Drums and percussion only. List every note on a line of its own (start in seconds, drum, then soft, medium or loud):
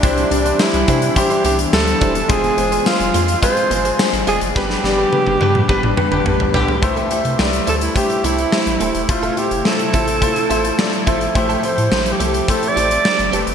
0.03 kick loud
0.03 closed hi-hat medium
0.18 closed hi-hat soft
0.31 closed hi-hat medium
0.46 closed hi-hat medium
0.59 snare loud
0.59 tambourine medium
0.74 closed hi-hat medium
0.88 kick medium
0.88 closed hi-hat medium
1.02 closed hi-hat medium
1.16 kick loud
1.16 closed hi-hat loud
1.30 closed hi-hat soft
1.45 closed hi-hat medium
1.59 closed hi-hat medium
1.73 snare loud
1.73 tambourine medium
1.87 closed hi-hat medium
2.01 kick medium
2.01 closed hi-hat medium
2.15 closed hi-hat medium
2.29 kick loud
2.29 closed hi-hat medium
2.44 closed hi-hat soft
2.58 closed hi-hat medium
2.72 closed hi-hat medium
2.86 snare loud
2.86 tambourine medium
3.00 closed hi-hat medium
3.14 closed hi-hat medium
3.28 closed hi-hat medium
3.43 kick loud
3.43 closed hi-hat loud
3.57 closed hi-hat soft
3.71 closed hi-hat medium
3.85 closed hi-hat medium
3.99 snare loud
3.99 tambourine medium
4.13 closed hi-hat medium
4.27 closed hi-hat medium
4.41 closed hi-hat medium
4.56 kick loud
4.56 snare medium
4.70 snare medium
4.84 snare medium
5.13 high tom medium
5.27 high tom medium
5.41 high tom medium
5.55 mid tom medium
5.69 kick loud
5.83 mid tom medium
5.97 mid tom medium
6.12 mid tom medium
6.26 mid tom medium
6.40 floor tom medium
6.54 floor tom loud
6.68 floor tom medium
6.82 kick loud
6.82 closed hi-hat medium
6.97 closed hi-hat soft
7.11 closed hi-hat medium
7.25 closed hi-hat medium
7.39 snare loud
7.53 closed hi-hat medium
7.67 closed hi-hat medium
7.81 closed hi-hat medium
7.96 kick medium
7.96 closed hi-hat medium
8.10 closed hi-hat soft
8.24 closed hi-hat medium
8.38 closed hi-hat medium
8.52 snare loud
8.67 closed hi-hat soft
8.81 closed hi-hat medium
8.95 closed hi-hat medium
9.09 kick loud
9.09 closed hi-hat medium
9.23 closed hi-hat soft
9.37 closed hi-hat medium
9.51 closed hi-hat medium
9.65 snare loud
9.79 closed hi-hat medium
9.94 kick medium
9.94 closed hi-hat medium
10.08 closed hi-hat medium
10.22 kick medium
10.22 closed hi-hat medium
10.36 closed hi-hat soft
10.51 closed hi-hat medium
10.65 closed hi-hat medium
10.79 snare loud
10.93 closed hi-hat soft
11.07 kick medium
11.07 closed hi-hat medium
11.21 closed hi-hat medium
11.35 kick loud
11.35 closed hi-hat medium
11.50 closed hi-hat soft
11.63 closed hi-hat medium
11.78 closed hi-hat medium
11.92 snare loud
12.06 closed hi-hat medium
12.20 closed hi-hat medium
12.34 closed hi-hat medium
12.48 kick medium
12.48 closed hi-hat medium
12.63 closed hi-hat soft
12.77 closed hi-hat medium
12.91 closed hi-hat medium
13.05 snare loud
13.19 closed hi-hat soft
13.33 closed hi-hat medium
13.47 closed hi-hat medium